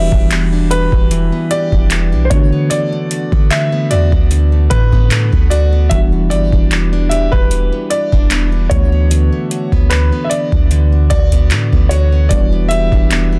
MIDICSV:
0, 0, Header, 1, 6, 480
1, 0, Start_track
1, 0, Tempo, 800000
1, 1625, Time_signature, 4, 2, 24, 8
1, 8036, End_track
2, 0, Start_track
2, 0, Title_t, "Grand piano"
2, 0, Program_c, 0, 0
2, 0, Note_on_c, 0, 76, 88
2, 423, Note_on_c, 0, 71, 92
2, 439, Note_off_c, 0, 76, 0
2, 904, Note_on_c, 0, 74, 101
2, 919, Note_off_c, 0, 71, 0
2, 1350, Note_on_c, 0, 72, 60
2, 1359, Note_off_c, 0, 74, 0
2, 1381, Note_on_c, 0, 73, 79
2, 1387, Note_off_c, 0, 72, 0
2, 1620, Note_on_c, 0, 74, 97
2, 1630, Note_off_c, 0, 73, 0
2, 2104, Note_on_c, 0, 76, 88
2, 2117, Note_off_c, 0, 74, 0
2, 2343, Note_on_c, 0, 74, 88
2, 2352, Note_off_c, 0, 76, 0
2, 2820, Note_on_c, 0, 71, 99
2, 2839, Note_off_c, 0, 74, 0
2, 3301, Note_on_c, 0, 74, 81
2, 3317, Note_off_c, 0, 71, 0
2, 3526, Note_off_c, 0, 74, 0
2, 3537, Note_on_c, 0, 76, 93
2, 3592, Note_off_c, 0, 76, 0
2, 3780, Note_on_c, 0, 74, 91
2, 4239, Note_off_c, 0, 74, 0
2, 4257, Note_on_c, 0, 76, 87
2, 4390, Note_on_c, 0, 71, 90
2, 4394, Note_off_c, 0, 76, 0
2, 4742, Note_on_c, 0, 74, 96
2, 4753, Note_off_c, 0, 71, 0
2, 5199, Note_off_c, 0, 74, 0
2, 5217, Note_on_c, 0, 73, 89
2, 5937, Note_on_c, 0, 71, 82
2, 5963, Note_off_c, 0, 73, 0
2, 6147, Note_on_c, 0, 76, 67
2, 6149, Note_off_c, 0, 71, 0
2, 6177, Note_on_c, 0, 74, 89
2, 6185, Note_off_c, 0, 76, 0
2, 6651, Note_off_c, 0, 74, 0
2, 6660, Note_on_c, 0, 74, 110
2, 7136, Note_on_c, 0, 73, 83
2, 7157, Note_off_c, 0, 74, 0
2, 7374, Note_on_c, 0, 74, 97
2, 7388, Note_off_c, 0, 73, 0
2, 7602, Note_off_c, 0, 74, 0
2, 7611, Note_on_c, 0, 76, 109
2, 8036, Note_off_c, 0, 76, 0
2, 8036, End_track
3, 0, Start_track
3, 0, Title_t, "Steel-string acoustic guitar"
3, 0, Program_c, 1, 25
3, 0, Note_on_c, 1, 52, 87
3, 0, Note_on_c, 1, 59, 58
3, 0, Note_on_c, 1, 67, 67
3, 75, Note_on_c, 1, 62, 59
3, 184, Note_off_c, 1, 59, 0
3, 186, Note_on_c, 1, 59, 59
3, 314, Note_off_c, 1, 62, 0
3, 316, Note_on_c, 1, 62, 58
3, 419, Note_off_c, 1, 67, 0
3, 426, Note_on_c, 1, 67, 63
3, 554, Note_off_c, 1, 62, 0
3, 556, Note_on_c, 1, 62, 55
3, 658, Note_off_c, 1, 52, 0
3, 666, Note_on_c, 1, 52, 74
3, 792, Note_off_c, 1, 59, 0
3, 794, Note_on_c, 1, 59, 54
3, 897, Note_off_c, 1, 67, 0
3, 904, Note_on_c, 1, 67, 66
3, 1032, Note_off_c, 1, 62, 0
3, 1035, Note_on_c, 1, 62, 55
3, 1142, Note_off_c, 1, 59, 0
3, 1144, Note_on_c, 1, 59, 55
3, 1272, Note_off_c, 1, 62, 0
3, 1275, Note_on_c, 1, 62, 57
3, 1383, Note_off_c, 1, 52, 0
3, 1385, Note_on_c, 1, 50, 80
3, 1436, Note_off_c, 1, 67, 0
3, 1512, Note_off_c, 1, 62, 0
3, 1515, Note_off_c, 1, 59, 0
3, 1515, Note_on_c, 1, 59, 57
3, 1623, Note_off_c, 1, 50, 0
3, 1625, Note_on_c, 1, 50, 90
3, 1755, Note_on_c, 1, 57, 55
3, 1866, Note_on_c, 1, 66, 61
3, 1993, Note_off_c, 1, 59, 0
3, 1995, Note_on_c, 1, 59, 56
3, 2098, Note_off_c, 1, 57, 0
3, 2105, Note_on_c, 1, 57, 58
3, 2232, Note_off_c, 1, 59, 0
3, 2234, Note_on_c, 1, 59, 57
3, 2337, Note_off_c, 1, 66, 0
3, 2344, Note_on_c, 1, 66, 65
3, 2472, Note_off_c, 1, 59, 0
3, 2475, Note_on_c, 1, 59, 53
3, 2581, Note_off_c, 1, 50, 0
3, 2584, Note_on_c, 1, 50, 77
3, 2706, Note_off_c, 1, 57, 0
3, 2713, Note_on_c, 1, 57, 55
3, 2817, Note_off_c, 1, 66, 0
3, 2824, Note_on_c, 1, 66, 65
3, 2953, Note_off_c, 1, 59, 0
3, 2955, Note_on_c, 1, 59, 61
3, 3059, Note_off_c, 1, 57, 0
3, 3066, Note_on_c, 1, 57, 53
3, 3192, Note_off_c, 1, 59, 0
3, 3195, Note_on_c, 1, 59, 57
3, 3297, Note_off_c, 1, 66, 0
3, 3304, Note_on_c, 1, 66, 66
3, 3433, Note_off_c, 1, 59, 0
3, 3435, Note_on_c, 1, 59, 56
3, 3543, Note_off_c, 1, 50, 0
3, 3546, Note_on_c, 1, 52, 85
3, 3596, Note_off_c, 1, 66, 0
3, 3597, Note_off_c, 1, 57, 0
3, 3675, Note_off_c, 1, 59, 0
3, 3675, Note_on_c, 1, 59, 58
3, 3786, Note_on_c, 1, 67, 66
3, 3916, Note_on_c, 1, 62, 54
3, 4024, Note_off_c, 1, 59, 0
3, 4027, Note_on_c, 1, 59, 61
3, 4154, Note_off_c, 1, 62, 0
3, 4157, Note_on_c, 1, 62, 56
3, 4259, Note_off_c, 1, 67, 0
3, 4266, Note_on_c, 1, 67, 63
3, 4394, Note_off_c, 1, 62, 0
3, 4396, Note_on_c, 1, 62, 51
3, 4498, Note_off_c, 1, 52, 0
3, 4505, Note_on_c, 1, 52, 81
3, 4632, Note_off_c, 1, 59, 0
3, 4635, Note_on_c, 1, 59, 54
3, 4739, Note_off_c, 1, 67, 0
3, 4746, Note_on_c, 1, 67, 68
3, 4872, Note_off_c, 1, 62, 0
3, 4874, Note_on_c, 1, 62, 60
3, 4982, Note_off_c, 1, 59, 0
3, 4985, Note_on_c, 1, 59, 55
3, 5111, Note_off_c, 1, 62, 0
3, 5114, Note_on_c, 1, 62, 59
3, 5222, Note_off_c, 1, 52, 0
3, 5278, Note_off_c, 1, 67, 0
3, 5352, Note_off_c, 1, 62, 0
3, 5354, Note_off_c, 1, 59, 0
3, 5354, Note_on_c, 1, 59, 53
3, 5464, Note_on_c, 1, 50, 83
3, 5595, Note_on_c, 1, 57, 58
3, 5705, Note_on_c, 1, 66, 65
3, 5833, Note_off_c, 1, 59, 0
3, 5835, Note_on_c, 1, 59, 57
3, 5938, Note_off_c, 1, 57, 0
3, 5945, Note_on_c, 1, 57, 61
3, 6072, Note_off_c, 1, 59, 0
3, 6075, Note_on_c, 1, 59, 60
3, 6179, Note_off_c, 1, 66, 0
3, 6186, Note_on_c, 1, 66, 65
3, 6312, Note_off_c, 1, 59, 0
3, 6314, Note_on_c, 1, 59, 54
3, 6423, Note_off_c, 1, 50, 0
3, 6425, Note_on_c, 1, 50, 77
3, 6548, Note_off_c, 1, 57, 0
3, 6555, Note_on_c, 1, 57, 54
3, 6657, Note_off_c, 1, 66, 0
3, 6664, Note_on_c, 1, 66, 67
3, 6794, Note_off_c, 1, 59, 0
3, 6796, Note_on_c, 1, 59, 58
3, 6898, Note_off_c, 1, 57, 0
3, 6906, Note_on_c, 1, 57, 57
3, 7033, Note_off_c, 1, 59, 0
3, 7035, Note_on_c, 1, 59, 57
3, 7136, Note_off_c, 1, 66, 0
3, 7143, Note_on_c, 1, 66, 64
3, 7272, Note_off_c, 1, 59, 0
3, 7274, Note_on_c, 1, 59, 55
3, 7382, Note_off_c, 1, 50, 0
3, 7384, Note_on_c, 1, 52, 84
3, 7436, Note_off_c, 1, 66, 0
3, 7437, Note_off_c, 1, 57, 0
3, 7514, Note_off_c, 1, 59, 0
3, 7514, Note_on_c, 1, 59, 58
3, 7625, Note_on_c, 1, 67, 66
3, 7755, Note_on_c, 1, 62, 57
3, 7864, Note_off_c, 1, 59, 0
3, 7866, Note_on_c, 1, 59, 60
3, 7993, Note_off_c, 1, 62, 0
3, 7995, Note_on_c, 1, 62, 59
3, 8036, Note_off_c, 1, 52, 0
3, 8036, Note_off_c, 1, 59, 0
3, 8036, Note_off_c, 1, 62, 0
3, 8036, Note_off_c, 1, 67, 0
3, 8036, End_track
4, 0, Start_track
4, 0, Title_t, "Synth keys"
4, 0, Program_c, 2, 88
4, 0, Control_c, 2, 64, 127
4, 0, Note_on_c, 2, 52, 61
4, 0, Note_on_c, 2, 55, 55
4, 0, Note_on_c, 2, 59, 58
4, 0, Note_on_c, 2, 62, 56
4, 0, Note_on_c, 2, 66, 69
4, 1359, Note_off_c, 2, 52, 0
4, 1366, Note_off_c, 2, 59, 0
4, 1370, Note_off_c, 2, 62, 0
4, 1374, Note_off_c, 2, 66, 0
4, 1377, Note_on_c, 2, 52, 63
4, 1381, Note_off_c, 2, 55, 0
4, 1384, Note_on_c, 2, 57, 56
4, 1392, Control_c, 2, 64, 0
4, 1392, Note_on_c, 2, 59, 58
4, 1401, Note_on_c, 2, 62, 57
4, 1408, Note_on_c, 2, 66, 73
4, 1502, Control_c, 2, 64, 127
4, 3277, Note_off_c, 2, 52, 0
4, 3281, Note_off_c, 2, 57, 0
4, 3285, Note_off_c, 2, 59, 0
4, 3289, Note_off_c, 2, 62, 0
4, 3293, Note_off_c, 2, 66, 0
4, 3538, Note_on_c, 2, 52, 63
4, 3546, Note_on_c, 2, 55, 57
4, 3554, Control_c, 2, 64, 0
4, 3555, Note_on_c, 2, 59, 58
4, 3562, Note_on_c, 2, 62, 58
4, 3570, Note_on_c, 2, 66, 72
4, 3642, Control_c, 2, 64, 127
4, 5198, Note_off_c, 2, 52, 0
4, 5201, Note_off_c, 2, 55, 0
4, 5206, Note_off_c, 2, 59, 0
4, 5210, Note_off_c, 2, 62, 0
4, 5214, Note_off_c, 2, 66, 0
4, 5218, Note_on_c, 2, 52, 65
4, 5227, Note_on_c, 2, 57, 61
4, 5232, Control_c, 2, 64, 0
4, 5234, Note_on_c, 2, 59, 57
4, 5243, Note_on_c, 2, 62, 58
4, 5250, Note_on_c, 2, 66, 71
4, 5329, Control_c, 2, 64, 127
4, 7118, Note_off_c, 2, 52, 0
4, 7122, Note_off_c, 2, 57, 0
4, 7125, Note_off_c, 2, 59, 0
4, 7130, Note_off_c, 2, 62, 0
4, 7134, Note_off_c, 2, 66, 0
4, 7374, Note_on_c, 2, 52, 62
4, 7383, Note_on_c, 2, 55, 59
4, 7390, Note_on_c, 2, 59, 60
4, 7393, Control_c, 2, 64, 0
4, 7398, Note_on_c, 2, 62, 54
4, 7407, Note_on_c, 2, 66, 68
4, 7496, Control_c, 2, 64, 127
4, 8036, Note_off_c, 2, 52, 0
4, 8036, Note_off_c, 2, 55, 0
4, 8036, Note_off_c, 2, 59, 0
4, 8036, Note_off_c, 2, 62, 0
4, 8036, Note_off_c, 2, 66, 0
4, 8036, End_track
5, 0, Start_track
5, 0, Title_t, "808-style bass"
5, 0, Program_c, 3, 38
5, 73, Note_on_c, 3, 28, 101
5, 535, Note_off_c, 3, 28, 0
5, 554, Note_on_c, 3, 28, 95
5, 785, Note_off_c, 3, 28, 0
5, 1034, Note_on_c, 3, 28, 106
5, 1275, Note_on_c, 3, 35, 89
5, 1284, Note_off_c, 3, 28, 0
5, 1380, Note_off_c, 3, 35, 0
5, 1385, Note_on_c, 3, 50, 94
5, 1971, Note_off_c, 3, 50, 0
5, 1993, Note_on_c, 3, 50, 98
5, 2347, Note_on_c, 3, 40, 94
5, 2356, Note_off_c, 3, 50, 0
5, 2469, Note_off_c, 3, 40, 0
5, 2474, Note_on_c, 3, 38, 95
5, 2811, Note_off_c, 3, 38, 0
5, 2827, Note_on_c, 3, 45, 105
5, 3181, Note_off_c, 3, 45, 0
5, 3197, Note_on_c, 3, 38, 88
5, 3532, Note_off_c, 3, 38, 0
5, 3547, Note_on_c, 3, 28, 105
5, 3786, Note_on_c, 3, 31, 98
5, 3795, Note_off_c, 3, 28, 0
5, 3909, Note_off_c, 3, 31, 0
5, 3915, Note_on_c, 3, 28, 97
5, 4376, Note_off_c, 3, 28, 0
5, 4397, Note_on_c, 3, 28, 100
5, 4626, Note_off_c, 3, 28, 0
5, 4876, Note_on_c, 3, 28, 98
5, 5212, Note_off_c, 3, 28, 0
5, 5226, Note_on_c, 3, 38, 99
5, 5580, Note_off_c, 3, 38, 0
5, 5834, Note_on_c, 3, 38, 97
5, 6065, Note_off_c, 3, 38, 0
5, 6314, Note_on_c, 3, 38, 101
5, 6651, Note_off_c, 3, 38, 0
5, 6666, Note_on_c, 3, 38, 108
5, 6907, Note_on_c, 3, 45, 89
5, 6916, Note_off_c, 3, 38, 0
5, 7029, Note_off_c, 3, 45, 0
5, 7036, Note_on_c, 3, 38, 90
5, 7372, Note_off_c, 3, 38, 0
5, 7384, Note_on_c, 3, 28, 108
5, 7739, Note_off_c, 3, 28, 0
5, 7752, Note_on_c, 3, 28, 98
5, 8036, Note_off_c, 3, 28, 0
5, 8036, End_track
6, 0, Start_track
6, 0, Title_t, "Drums"
6, 73, Note_on_c, 9, 36, 87
6, 133, Note_off_c, 9, 36, 0
6, 185, Note_on_c, 9, 42, 62
6, 189, Note_on_c, 9, 39, 107
6, 245, Note_off_c, 9, 42, 0
6, 249, Note_off_c, 9, 39, 0
6, 427, Note_on_c, 9, 42, 68
6, 487, Note_off_c, 9, 42, 0
6, 554, Note_on_c, 9, 36, 93
6, 614, Note_off_c, 9, 36, 0
6, 666, Note_on_c, 9, 42, 68
6, 726, Note_off_c, 9, 42, 0
6, 905, Note_on_c, 9, 42, 58
6, 965, Note_off_c, 9, 42, 0
6, 1034, Note_on_c, 9, 36, 79
6, 1094, Note_off_c, 9, 36, 0
6, 1143, Note_on_c, 9, 42, 71
6, 1145, Note_on_c, 9, 39, 99
6, 1203, Note_off_c, 9, 42, 0
6, 1205, Note_off_c, 9, 39, 0
6, 1385, Note_on_c, 9, 36, 103
6, 1385, Note_on_c, 9, 42, 64
6, 1445, Note_off_c, 9, 36, 0
6, 1445, Note_off_c, 9, 42, 0
6, 1624, Note_on_c, 9, 42, 79
6, 1684, Note_off_c, 9, 42, 0
6, 1865, Note_on_c, 9, 42, 59
6, 1925, Note_off_c, 9, 42, 0
6, 1993, Note_on_c, 9, 36, 87
6, 2053, Note_off_c, 9, 36, 0
6, 2104, Note_on_c, 9, 42, 59
6, 2109, Note_on_c, 9, 39, 103
6, 2164, Note_off_c, 9, 42, 0
6, 2169, Note_off_c, 9, 39, 0
6, 2345, Note_on_c, 9, 42, 63
6, 2405, Note_off_c, 9, 42, 0
6, 2474, Note_on_c, 9, 36, 87
6, 2534, Note_off_c, 9, 36, 0
6, 2585, Note_on_c, 9, 42, 65
6, 2645, Note_off_c, 9, 42, 0
6, 2825, Note_on_c, 9, 42, 60
6, 2827, Note_on_c, 9, 36, 88
6, 2885, Note_off_c, 9, 42, 0
6, 2887, Note_off_c, 9, 36, 0
6, 2955, Note_on_c, 9, 36, 82
6, 3015, Note_off_c, 9, 36, 0
6, 3066, Note_on_c, 9, 42, 68
6, 3068, Note_on_c, 9, 39, 104
6, 3126, Note_off_c, 9, 42, 0
6, 3128, Note_off_c, 9, 39, 0
6, 3197, Note_on_c, 9, 36, 75
6, 3257, Note_off_c, 9, 36, 0
6, 3308, Note_on_c, 9, 42, 62
6, 3368, Note_off_c, 9, 42, 0
6, 3546, Note_on_c, 9, 36, 98
6, 3546, Note_on_c, 9, 42, 79
6, 3606, Note_off_c, 9, 36, 0
6, 3606, Note_off_c, 9, 42, 0
6, 3787, Note_on_c, 9, 42, 58
6, 3847, Note_off_c, 9, 42, 0
6, 3915, Note_on_c, 9, 36, 85
6, 3975, Note_off_c, 9, 36, 0
6, 4027, Note_on_c, 9, 42, 63
6, 4031, Note_on_c, 9, 39, 101
6, 4087, Note_off_c, 9, 42, 0
6, 4091, Note_off_c, 9, 39, 0
6, 4269, Note_on_c, 9, 42, 63
6, 4329, Note_off_c, 9, 42, 0
6, 4395, Note_on_c, 9, 36, 87
6, 4455, Note_off_c, 9, 36, 0
6, 4506, Note_on_c, 9, 42, 69
6, 4566, Note_off_c, 9, 42, 0
6, 4744, Note_on_c, 9, 42, 59
6, 4804, Note_off_c, 9, 42, 0
6, 4875, Note_on_c, 9, 36, 81
6, 4935, Note_off_c, 9, 36, 0
6, 4984, Note_on_c, 9, 42, 67
6, 4986, Note_on_c, 9, 39, 101
6, 5044, Note_off_c, 9, 42, 0
6, 5046, Note_off_c, 9, 39, 0
6, 5226, Note_on_c, 9, 36, 99
6, 5226, Note_on_c, 9, 42, 61
6, 5286, Note_off_c, 9, 36, 0
6, 5286, Note_off_c, 9, 42, 0
6, 5467, Note_on_c, 9, 42, 83
6, 5527, Note_off_c, 9, 42, 0
6, 5707, Note_on_c, 9, 42, 63
6, 5767, Note_off_c, 9, 42, 0
6, 5834, Note_on_c, 9, 36, 82
6, 5894, Note_off_c, 9, 36, 0
6, 5944, Note_on_c, 9, 42, 64
6, 5949, Note_on_c, 9, 39, 113
6, 6004, Note_off_c, 9, 42, 0
6, 6009, Note_off_c, 9, 39, 0
6, 6185, Note_on_c, 9, 42, 69
6, 6245, Note_off_c, 9, 42, 0
6, 6314, Note_on_c, 9, 36, 91
6, 6374, Note_off_c, 9, 36, 0
6, 6425, Note_on_c, 9, 42, 62
6, 6485, Note_off_c, 9, 42, 0
6, 6664, Note_on_c, 9, 42, 52
6, 6665, Note_on_c, 9, 36, 94
6, 6724, Note_off_c, 9, 42, 0
6, 6725, Note_off_c, 9, 36, 0
6, 6793, Note_on_c, 9, 36, 83
6, 6793, Note_on_c, 9, 42, 53
6, 6853, Note_off_c, 9, 36, 0
6, 6853, Note_off_c, 9, 42, 0
6, 6903, Note_on_c, 9, 42, 69
6, 6906, Note_on_c, 9, 39, 103
6, 6963, Note_off_c, 9, 42, 0
6, 6966, Note_off_c, 9, 39, 0
6, 7036, Note_on_c, 9, 36, 80
6, 7096, Note_off_c, 9, 36, 0
6, 7145, Note_on_c, 9, 42, 59
6, 7205, Note_off_c, 9, 42, 0
6, 7384, Note_on_c, 9, 36, 98
6, 7384, Note_on_c, 9, 42, 78
6, 7444, Note_off_c, 9, 36, 0
6, 7444, Note_off_c, 9, 42, 0
6, 7625, Note_on_c, 9, 42, 60
6, 7685, Note_off_c, 9, 42, 0
6, 7753, Note_on_c, 9, 36, 91
6, 7813, Note_off_c, 9, 36, 0
6, 7864, Note_on_c, 9, 42, 62
6, 7869, Note_on_c, 9, 39, 105
6, 7924, Note_off_c, 9, 42, 0
6, 7929, Note_off_c, 9, 39, 0
6, 8036, End_track
0, 0, End_of_file